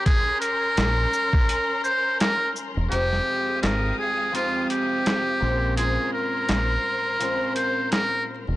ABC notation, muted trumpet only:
X:1
M:4/4
L:1/8
Q:"Swing 16ths" 1/4=84
K:Bbdor
V:1 name="Muted trumpet"
A B4 c B z | G2 B A F G3 | A B4 c B z |]